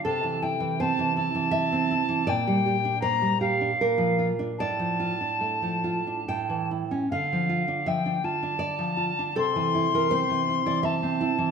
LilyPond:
<<
  \new Staff \with { instrumentName = "Recorder" } { \time 3/4 \key d \minor \tempo 4 = 80 a''8 g''8 a''8 a''4. | g''4 bes''8 f''4 r8 | a''2~ a''8 r8 | f''4 g''8 a''4. |
c'''2 a''4 | }
  \new Staff \with { instrumentName = "Nylon-string guitar" } { \time 3/4 \key d \minor << { a'4 c''4 e''4 | d''4 c''4 bes'4 | d''2 g''4 | f''4 e''4 d''4 |
a'8. bes'16 c''8. d''16 e''4 | } \\ { c16 e16 e'16 e16 c'16 e16 e'16 e8 c'16 e'16 e16 | bes,16 g16 g'16 d'16 bes16 g16 g'16 d'16 bes,16 f16 f'16 d'16 | a,16 f16 f'16 d'16 a16 f16 f'16 d'16 a,16 e16 e'16 cis'16 | d16 f16 f'16 d'16 f16 d'16 f'16 d'8 f16 f'16 d'16 |
c16 e16 e'16 e16 c'16 e16 e'16 e8 c'16 e'16 e16 | } >> }
>>